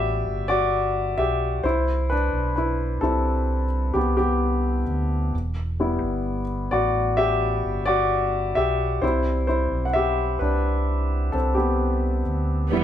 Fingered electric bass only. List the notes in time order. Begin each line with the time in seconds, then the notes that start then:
Already playing: A1
0.26 G1
1.18 B1
1.64 C2
2.33 B1
3.02 C2
3.94 C2
4.87 D2
5.33 E1
6.02 G1
6.72 A1
7.64 G1
8.57 B1
9.02 C2
9.71 B1
10.41 C2
11.33 C2
12.26 D2
12.72 E1